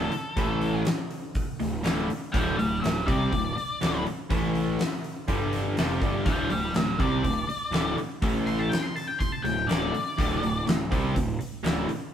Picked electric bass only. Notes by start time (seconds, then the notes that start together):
Already playing: D1
0.12 muted picked electric bass stroke
0.37 A1
1.61 D1
1.85 D1
2.11 muted picked electric bass stroke
2.34 D1
2.59 D1
2.83 D1
3.08 C2
3.32 D1
3.57 muted picked electric bass stroke
3.82 D1
4.08 muted picked electric bass stroke
4.31 A1
5.28 G1
5.77 F1
6.01 G1
6.26 D1
6.50 D1
6.75 D1
7.00 C2
7.24 D1
7.47 muted picked electric bass stroke
7.71 D1
7.97 muted picked electric bass stroke
8.22 A1
9.44 D1
9.68 D1
9.94 muted picked electric bass stroke
10.19 D1
10.43 D1
10.68 D1
10.92 C2
11.16 D1
11.41 muted picked electric bass stroke
11.64 D1
11.89 muted picked electric bass stroke